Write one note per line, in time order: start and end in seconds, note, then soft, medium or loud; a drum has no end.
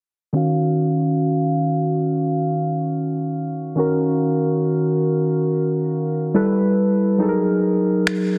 0.33 3.73 D#3 medium
0.33 3.73 C#4 medium
0.33 3.74 F#4 medium
0.33 3.74 F5 medium
3.75 6.30 D#3 medium
3.75 6.30 C#4 medium
3.75 6.31 F#4 medium
3.79 6.32 A#4 medium
6.34 7.20 G3 medium
6.34 7.20 E4 medium
6.34 7.21 A4 medium
6.34 7.21 B4 medium
7.18 8.38 F#3 medium
7.18 8.38 D#4 medium
7.18 8.38 G#4 medium
7.18 7.29 A4 medium
7.29 8.38 A#4 medium
8.07 finger snap loud